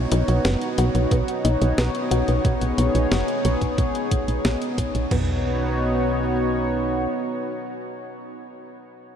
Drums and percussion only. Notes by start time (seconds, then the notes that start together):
0.12 closed hi-hat
0.28 closed hi-hat
0.45 snare, closed hi-hat
0.62 closed hi-hat
0.78 closed hi-hat
0.95 closed hi-hat
1.11 kick, closed hi-hat
1.28 closed hi-hat
1.45 closed hi-hat
1.62 closed hi-hat
1.78 snare, closed hi-hat
1.95 closed hi-hat
2.11 closed hi-hat
2.28 closed hi-hat
2.45 kick, closed hi-hat
2.61 closed hi-hat
2.78 closed hi-hat
2.95 closed hi-hat
3.12 snare, closed hi-hat
3.28 closed hi-hat
3.45 closed hi-hat
3.61 kick, closed hi-hat
3.78 kick, closed hi-hat
3.95 closed hi-hat
4.11 kick, closed hi-hat
4.28 closed hi-hat
4.45 snare, closed hi-hat
4.62 closed hi-hat
4.78 kick, closed hi-hat
4.95 closed hi-hat
5.11 kick, floor tom, crash